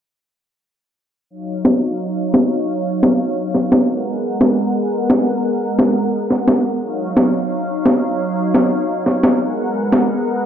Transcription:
1.30 analog synth pad F#3 D#4 C#5 F5
1.65 snare
2.34 snare
3.03 snare
3.55 snare
3.72 snare
3.89 analog synth pad G#3 B3 A#4 F#5
4.41 snare
5.10 snare
5.79 snare
6.30 snare
6.48 snare
6.82 analog synth pad F#3 D#4 C#5 F5
7.17 snare
7.86 snare
8.54 snare
9.06 snare
9.23 snare
9.40 analog synth pad G#3 B3 A#4 F#5
9.92 snare

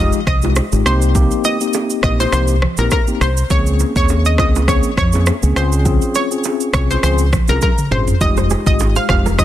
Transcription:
Already playing: tine electric piano G#3 D#4 F4 G4, synth pluck D#5
0.12 shaker
0.27 fingered electric bass C2, synth pluck D#5, kick, cross-stick, low conga
0.42 tine electric piano G#3 D#4 F4 G4, low bongo, shaker
0.56 cross-stick, high bongo, shaker
0.72 fingered electric bass G#1, tine electric piano G#3 D#4 F4 G4, shaker
0.85 fingered electric bass C2, tine electric piano A#3 C4 D#4 G4, synth pluck C5, cross-stick, shaker
1.02 shaker
1.15 tine electric piano A#3 C4 D#4 G4, kick, low conga, shaker
1.31 shaker
1.44 synth pluck D#5, low bongo, shaker
1.61 tine electric piano A#3 C4 D#4 G4, shaker
1.73 high bongo, shaker
1.90 shaker
2.03 fingered electric bass A#1, tine electric piano A#3 C4 D#4 G4, synth pluck D#5, kick, cross-stick, low bongo
2.20 synth pluck C5, low bongo, shaker
2.32 fingered electric bass C2, tine electric piano A#3 C4 D#4 G4, synth pluck C5, cross-stick, low conga, shaker
2.48 shaker
2.62 cross-stick, low conga
2.77 fingered electric bass A#1, tine electric piano A#3 C4 D#4 G4, synth pluck A#4, low bongo, shaker
2.91 synth pluck A#4, kick, cross-stick, high bongo, shaker
3.07 tine electric piano A#3 C4 D#4 G4, shaker
3.21 fingered electric bass C2, synth pluck C5, cross-stick, shaker
3.37 shaker
3.50 fingered electric bass C#2, tine electric piano A#3 C4 C#4 G#4, synth pluck C#5, kick, low conga, shaker
3.66 shaker
3.79 low bongo, shaker
3.96 fingered electric bass D#2, tine electric piano A#3 C4 C#4 G#4, synth pluck C#5, kick, shaker
4.09 high bongo, shaker
4.25 synth pluck D#5, shaker
4.38 fingered electric bass C#2, tine electric piano A#3 C4 C#4 G#4, synth pluck D#5, kick, cross-stick, low bongo
4.55 low bongo, shaker
4.68 tine electric piano A#3 C4 C#4 G#4, synth pluck C#5, kick, cross-stick, low conga, shaker
4.83 shaker
4.97 fingered electric bass F2, synth pluck C#5, kick, cross-stick, low conga
5.13 tine electric piano A#3 C4 C#4 G#4, low bongo, shaker
5.26 cross-stick, high bongo, shaker
5.43 fingered electric bass C#2, tine electric piano A#3 C4 C#4 G#4, shaker
5.56 fingered electric bass C#2, tine electric piano C4 C#4 F4 G#4, synth pluck C5, cross-stick, shaker
5.72 shaker
5.85 tine electric piano C4 C#4 F4 G#4, kick, low conga, shaker
6.02 shaker
6.15 synth pluck C#5, low bongo, shaker
6.31 tine electric piano C4 C#4 F4 G#4, shaker
6.44 high bongo, shaker
6.61 shaker
6.73 fingered electric bass C2, tine electric piano C4 C#4 G#4, synth pluck C#5, kick, cross-stick, low bongo, shaker
6.91 synth pluck C5, low bongo, shaker
7.03 fingered electric bass C#2, tine electric piano C4 C#4 F4 G#4, synth pluck C5, cross-stick, low conga, shaker
7.18 shaker
7.33 kick, cross-stick, low conga, shaker
7.48 fingered electric bass C2, tine electric piano C4 C#4 F4 G#4, synth pluck A#4, high bongo, low bongo, shaker
7.62 synth pluck A#4, kick, high tom, high bongo, shaker
7.78 mid tom, shaker
7.91 fingered electric bass G1, tine electric piano C4 C#4 F4 G#4, synth pluck C5, mid tom, high bongo
8.08 floor tom, shaker
8.21 fingered electric bass F1, tine electric piano G#3 D#4 F4 G4, synth pluck D#5, kick, low conga, shaker
8.37 kora C5, shaker
8.50 kora G#4, low bongo, shaker
8.66 fingered electric bass G#1, tine electric piano G#3 D#4 F4 G4, synth pluck D#5, kick, shaker
8.79 high bongo, shaker
8.96 kora C5, synth pluck F5, shaker
9.09 fingered electric bass F1, tine electric piano G#3 D#4 F4 G4, synth pluck F5, kick, cross-stick, low bongo
9.26 kora A#4, low bongo, shaker
9.38 tine electric piano G#3 D#4 F4 G4, synth pluck D#5, kick, cross-stick, low conga, shaker

